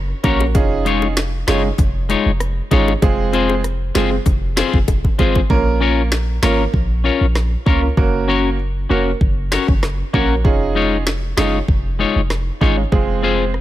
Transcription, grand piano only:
0.24 A#3 C#4 F#4 A#4
0.55 C#4 D#4 F4 G#4
1.47 C#4 D#4 F4 G#4
2.71 C#4 D#4 F4 G#4
3.02 G#3 C4 F4 G#4
3.95 G#3 C4 F4 G#4
5.19 G#3 C4 F4 G#4
5.50 A#3 C#4 F4 A#4
6.43 A#3 C#4 F4 A#4
7.66 A#3 C#4 F4 A#4
7.97 A#3 C#4 F#4 A#4
8.90 A#3 C#4 F#4 A#4
10.13 A#3 C#4 F#4 A#4
10.44 C#4 D#4 F4 G#4
11.37 C#4 D#4 F4 G#4
12.61 C#4 D#4 F4 G#4
12.92 G#3 C4 F4 G#4

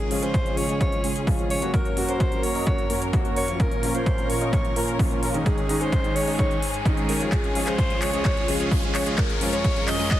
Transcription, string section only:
Already playing: C#3 C#4 F4 G#4
1.74 F#2 F#3 C#4 A#4
3.60 A#2 F3 A#4
5.46 G#2 D#3 G#4
7.32 C#2 C#3 F4
9.18 F#2 C#4 A#4

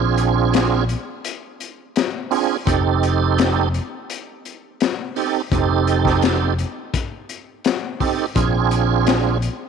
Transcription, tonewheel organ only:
Already playing: C4 D4 F4 G#4
2.31 C4 D4 F4 G#4
2.66 C4 D#4 G4 A4
5.16 C4 D#4 G4 A4
5.52 C4 D#4 G4 A4
8.00 C4 D#4 G4 A4
8.35 C4 D4 F4 G#4

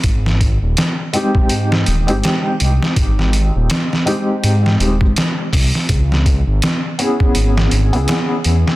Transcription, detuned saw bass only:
0.04 G#1
0.62 D#1
1.51 G#2
1.87 D#1
2.09 G#1
2.61 C2
2.96 G#1
3.56 D#1
4.44 G#2
4.80 D#1
5.01 G#1
5.53 C2
5.89 C#2
6.47 G#1
7.35 G#1
7.72 G#1
7.93 C#2
8.45 E2

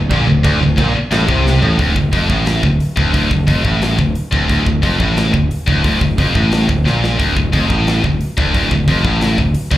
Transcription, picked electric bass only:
0.10 A#1
0.27 D1
0.44 D1
0.61 D1
0.78 A#1
0.95 muted picked electric bass stroke
1.11 A1
1.29 C2
1.62 A1
1.79 D1
1.96 D1
2.13 F1
2.29 A1
2.63 D1
2.97 D1
3.14 D1
3.31 D1
3.48 F1
3.65 A1
3.98 D1
4.32 D1
4.50 D1
4.66 D1
4.83 F1
5.00 A1
5.33 D1
5.67 D1
5.84 D1
6.01 D1
6.18 F1
6.35 A1
6.69 D1
6.85 A#1
7.20 D1
7.37 D1
7.53 F1
7.70 A1
8.04 D1
8.38 D1
8.55 D1
8.71 D1
8.87 F1
9.04 A1
9.38 D1
9.71 D1

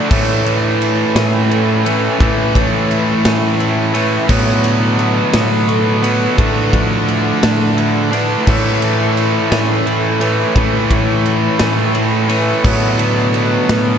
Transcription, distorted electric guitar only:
Already playing: A3
0.10 A2 E3 A3
1.84 A2 E3 A3
2.19 A2 E3 A3
3.94 A2 E3 A3
4.28 B2 F#3 B3
6.03 B2 F#3 B3
6.37 D3 A3 D4
8.12 D3 A3 D4
8.46 A2 E3 A3
10.20 A2 E3 A3
10.55 A2 E3 A3
12.29 A2 E3 A3
12.63 B2 F#3 B3

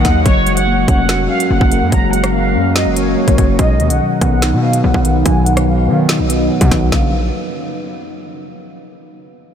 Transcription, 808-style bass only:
0.05 D#2
0.26 F#1
0.88 F1
1.51 F#1
1.61 F#1
1.82 F#2
1.92 F#1
2.55 F#2
2.86 F#1
3.28 F#1
3.38 F#1
3.59 B1
3.80 D#2
3.90 B1
4.21 B1
4.53 B2
4.84 B1
4.94 B1
5.26 B1
5.88 D#3
6.19 B1
6.61 B2
6.72 B1
6.92 A#1

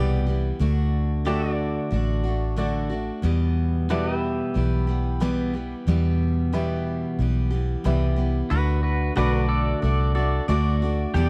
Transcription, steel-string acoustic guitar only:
Already playing: E2 B2 E3 G3 B3 G4
0.27 E3 G3 B3 G4
0.59 D3 A3 D4 F#4
1.25 D3 A3 D4 F#4
1.91 D3 A3 D4 F#4
2.24 A3 D4 F#4
2.56 D3 A3 D4 F#4
2.90 A3 D4 F#4
3.22 E2 B2 E3 G3 B3 G4
3.89 E2 B2 E3 G3 B3 G4
4.54 E3 G3 B3 G4
4.87 E3 G3 B3 G4
5.20 E2 B2 E3 G3 B3 G4
5.54 E3 G3 B3 G4
5.87 E2 B2 E3 G3 B3 G4
6.53 E2 B2 E3 G3 B3 G4
7.19 E3 G3 B3 G4
7.50 E3 G3 B3 G4
7.84 E2 B2 E3 G3 B3 G4
8.16 E3 G3 B3 G4
8.50 D3 A3 D4 F#4
9.16 D3 A3 D4 F#4
9.82 D3 A3 D4 F#4
10.15 A3 D4 F#4
10.48 D3 A3 D4 F#4
10.82 A3 D4 F#4
11.14 E2 B2 E3 G3 B3 G4

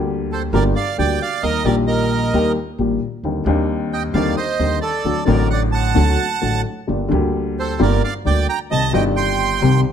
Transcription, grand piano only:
Already playing: D2 D3 G3 A#3 G4
0.53 G1 G2 D3 G3 A#3 G4
0.98 D2 D3 G3 A#3 G4
1.43 D#2 D#3 G3 A#3 G4
1.64 A#1 A#2 D#3 G3 A#3 G4
2.34 D#2 D#3 G3 A#3 G4
2.79 A#1 A#2 D#3 G3 A#3 G4
3.24 D#2 D3 D#3 G3 C4 D#4
3.45 D#2 D#3 G3 C4 D4
3.49 D#4
4.14 D#2 D3 D#3 G3 C4 D#4
4.59 D#2 D3 D#3 G3 C4 D#4
5.05 D2 D3 F#3 A3 F#4
5.25 A1 A2 D3 F#3 A3
5.29 F#4
5.95 D2 D3 F#3 A3 F#4
6.41 A1 A2 D3 F#3 A3 F#4
6.87 G1 G2 D3 G3 A#3 G4
7.09 D2 D3 G3 A#3
7.13 G4
7.79 G1 G2 D3 G3 A#3 G4
8.25 D2 D3 G3 A#3 G4
8.70 C2 C3 D#3 G3 C4 G4
8.91 G1 G2 D#3 G3 C4
8.96 G4
9.62 C2 C3 D#3 G3 C4 G4

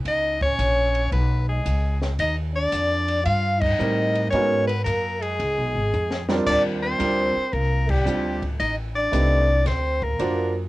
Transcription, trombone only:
0.07 D#4
0.42 C#4
1.12 B3
1.48 G#3
2.19 D#4
2.54 D4
3.24 F4
3.60 D#4
4.31 C#4
4.67 B3
4.84 A#3
5.21 G#3
6.47 D4
6.82 C4
7.54 A#3
7.91 G3
8.60 D#4
8.96 D4
9.67 C4
10.03 A#3

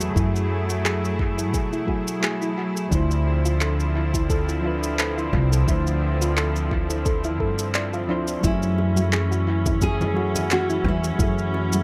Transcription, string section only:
Already playing: F#3 A3 E4 G#4
2.91 D3 F3 C4
8.44 E3 C#4 E4

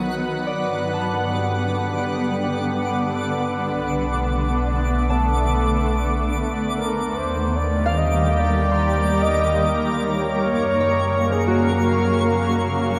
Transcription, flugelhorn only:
0.05 B4
1.32 G4
1.74 G4
3.01 A4
3.41 B4
4.68 D5
5.11 A4
6.78 A#4
7.16 C5
7.57 D5
7.98 D#5
8.39 D5
9.22 D#5
10.05 C#5
11.32 G#4
11.73 A#4

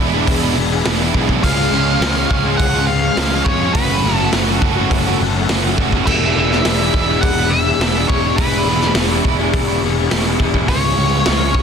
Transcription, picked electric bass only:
0.00 E1
0.27 E1
0.56 E1
0.85 E1
1.14 B1
1.44 C#2
1.71 C#2
2.00 C#2
2.31 C#2
2.60 C#2
3.17 C#2
3.46 F2
3.75 F#1
4.04 F#1
4.33 F#1
4.62 F#1
4.91 F#1
5.20 F#1
5.79 F#1
6.07 E1
6.36 E1
6.65 E1
6.94 E1
7.23 E1
7.79 E1
8.10 E1
8.38 E1
8.65 E1
8.94 E1
9.25 E1
9.53 E1
9.82 E1
10.11 E1
10.40 E1
10.68 C#2
10.97 C#2
11.27 C#2
11.55 C#2

